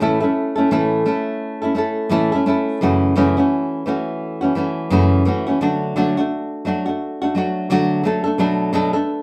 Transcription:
0.00 A2 E3 A3 C#4 E4 A4
0.20 A3 C#4 E4 A4
0.56 A3 C#4 E4 A4
0.71 A2 E3 A3 C#4 E4 A4
1.06 A3 C#4 E4 A4
1.62 A3 C#4 E4 A4
1.75 A3 C#4 E4 A4
2.09 A2 E3 A3 C#4 E4 A4
2.32 A3 C#4 E4 A4
2.46 A3 C#4 E4 A4
2.81 F#2 C#3 E3 A3 C#4 F#4
3.16 F#2 C#3 E3 A3 C#4 F#4
3.37 E3 A3 C#4 F#4
3.86 E3 A3 C#4 F#4
4.41 E3 A3 C#4 F#4
4.55 E3 A3 C#4 F#4
4.90 F#2 C#3 E3 A3 C#4 F#4
5.25 E3 A3 C#4 F#4
5.47 E3 A3 C#4 F#4
5.61 D3 F#3 A3 D4 F#4
5.96 D3 F#3 A3 D4 F#4
6.17 A3 D4 F#4
6.65 F#3 A3 D4 F#4
6.86 A3 D4 F#4
7.22 A3 D4 F#4
7.35 F#3 A3 D4 F#4
7.70 D3 F#3 A3 D4 F#4
8.03 F#3 A3 D4 A4
8.24 A3 D4 A4
8.38 B2 F#3 A3 D4 A4
8.73 B2 F#3 A3 D4 A4
8.93 A3 D4 A4

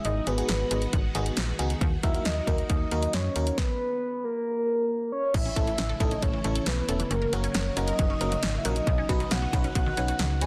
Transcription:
Already playing: G#3
0.05 G#1 D#3 B3 F#4 D#5, closed hi-hat
0.27 G#1 B3 D#4 F#4 G#4 B4, closed hi-hat
0.38 B3 D#4 F#4 G#4, closed hi-hat
0.49 G#1, snare, closed hi-hat
0.71 G#1 B3 D#4 F#4 G#4, closed hi-hat
0.82 closed hi-hat
0.93 G#1, kick, closed hi-hat
1.15 G#1 B3 D#4 F#4 G#4, closed hi-hat
1.26 closed hi-hat
1.37 A#1, snare, closed hi-hat
1.59 C#2 B3 D#4 F#4 G#4, closed hi-hat
1.70 closed hi-hat
1.81 D#2 F#3 A#3, kick, closed hi-hat
2.03 D#2 A#3 D#4 F#4 A#4 E5, kick, closed hi-hat
2.14 A#3 D#4 F#4 A#4, closed hi-hat
2.25 D#2 D#5, snare, closed hi-hat
2.47 D#2 A#3 D#4 F#4 A#4, kick, closed hi-hat
2.58 closed hi-hat
2.69 D#2 D#5, kick, closed hi-hat
2.91 D#2 A#3 D#4 F#4 A#4, closed hi-hat
3.03 closed hi-hat
3.13 F#2 C#5, snare, closed hi-hat
3.36 D#2 A#3 D#4 F#4 A#4, closed hi-hat
3.47 closed hi-hat
3.58 B4, kick, snare
4.24 A#4
5.12 C#5
5.34 A1 C#3 E3 A3 E4 E5, kick, closed hi-hat, crash
5.45 C#4
5.56 A1 A3 C#4 E4 A4 E5, kick, closed hi-hat
5.67 E3, closed hi-hat
5.78 A1 C#4, snare, closed hi-hat
5.89 A4
6.00 A1 E3 A3 C#4 E4 A4 D#5, kick, closed hi-hat
6.11 C#4, closed hi-hat
6.22 A1 A4 C#5, kick, closed hi-hat
6.33 E3
6.44 A1 A3 C#4 E4 A4, closed hi-hat
6.55 A4, closed hi-hat
6.66 B1 E3 B4, snare, closed hi-hat
6.88 E1 A3 C#4 E4 A4, closed hi-hat
7.00 E3, closed hi-hat
7.10 F#1 F#3 A#3 C#4 F#4 A#4, closed hi-hat
7.22 A#4
7.33 F#1 F#3 A#3 C#4 F#4 A#4 C#5, closed hi-hat
7.44 C#4, closed hi-hat
7.54 F#1 A#4, snare, closed hi-hat
7.77 F#1 A#3 C#4 F#4 A#4 D#5, closed hi-hat
7.88 A#4, closed hi-hat
7.99 F#1 F#3, kick, closed hi-hat
8.10 C#4
8.21 F#1 A#3 C#4 F#4 A#4, closed hi-hat
8.32 F#3, closed hi-hat
8.43 G#1 C#4, snare, closed hi-hat
8.58 E5
8.65 A#1 F#3 A#3 C#4 F#4 A#4 D#5, closed hi-hat
8.76 closed hi-hat
8.87 B1 D#3 B3 D#4, kick, closed hi-hat
8.98 C#4
9.09 B1 C#4 D#4 F#4 B4, kick, closed hi-hat
9.20 D#3, closed hi-hat
9.31 B1 C#4 F#5, snare, closed hi-hat
9.42 F#4
9.53 B1 D#3 C#4 D#4 F#4 B4, kick, closed hi-hat
9.64 C#4, closed hi-hat
9.75 B1 F#4 F#5, kick, closed hi-hat
9.86 D#3
9.97 B1 C#4 D#4 F#4 B4, closed hi-hat
10.08 F#4, closed hi-hat
10.19 C#2 D#3, snare, closed hi-hat
10.41 D#2 C#4 D#4 F#4 B4 G#5, closed hi-hat

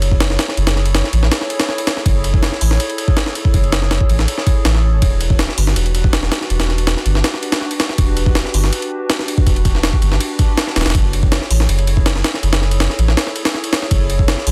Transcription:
Already playing: F#1 E4 G#4 A4 C#5
0.02 ride
0.11 kick
0.20 snare, ride
0.30 snare
0.39 snare, ride
0.48 snare
0.57 F#1, ride
0.67 snare, ride
0.76 snare
0.85 ride
0.95 snare, ride
1.04 snare
1.13 A1 E4 G#4 A4 C#5, ride
1.23 snare
1.32 snare, ride
1.41 snare
1.50 ride
1.60 snare, ride
1.69 snare
1.78 ride
1.87 snare, ride
1.97 snare
2.06 F#1, kick, ride
2.24 ride
2.34 kick
2.43 snare, ride
2.52 snare
2.61 A1 E4 G#4 A4 C#5, open hi-hat
2.71 snare
2.80 ride
2.90 ride
2.98 ride
3.08 kick
3.17 snare, ride
3.26 snare
3.35 ride
3.45 kick
3.54 F#1, kick, ride
3.64 ride
3.72 snare, ride
3.82 snare
3.91 snare, ride
4.01 kick
4.09 A1 E4 G#4 A4 C#5, ride
4.19 snare
4.28 ride
4.38 snare
4.47 kick, ride
4.65 A1, snare, ride
4.75 snare
4.93 G#1
5.02 E1, kick, ride
5.21 ride
5.30 kick
5.39 snare, ride
5.49 snare
5.57 G1 D4 F#4 G4 B4, open hi-hat
5.67 snare
5.76 E1, ride
5.86 ride
5.95 ride
6.04 kick
6.13 snare, ride
6.23 snare
6.32 snare, ride
6.41 snare
6.50 E1, ride
6.60 snare, ride
6.69 snare
6.78 ride
6.87 snare, ride
6.97 snare
7.05 G1 D4 F#4 G4 B4, ride
7.15 snare
7.24 snare, ride
7.34 snare
7.43 ride
7.52 snare, ride
7.61 snare
7.71 ride
7.80 snare, ride
7.89 snare
7.98 E1, kick, ride
8.17 ride
8.26 kick
8.35 snare, ride
8.45 snare
8.54 G1 D4 F#4 G4 B4, open hi-hat
8.64 snare
8.73 ride
8.82 ride
9.10 snare, ride
9.19 snare
9.28 ride
9.38 kick
9.47 E1, kick, ride
9.56 ride
9.65 kick, ride
9.75 snare
9.83 snare, ride
9.93 kick
10.02 G1, ride
10.12 snare
10.21 ride
10.39 kick, ride
10.58 snare, ride
10.67 snare
10.76 D1, snare, ride
10.81 snare, ride
10.86 E1, snare, ride
10.90 snare, ride
10.95 F#1, kick, ride
11.13 ride
11.23 kick
11.32 snare, ride
11.42 snare
11.50 A1 E4 G#4 A4 C#5, open hi-hat
11.60 snare
11.69 F#1, ride
11.79 ride
11.87 ride
11.97 kick
12.06 snare, ride
12.16 snare
12.24 snare, ride
12.34 snare
12.43 F#1, ride
12.53 snare, ride
12.62 snare
12.71 ride
12.80 snare, ride
12.90 snare
12.98 A1 E4 G#4 A4 C#5, ride
13.08 snare
13.17 snare, ride
13.27 snare
13.36 ride
13.45 snare, ride
13.54 snare
13.64 ride
13.73 snare, ride
13.82 snare
13.91 F#1, kick, ride
14.10 ride
14.19 kick
14.28 snare, ride
14.38 snare
14.46 A1 E4 G#4 A4 C#5, open hi-hat

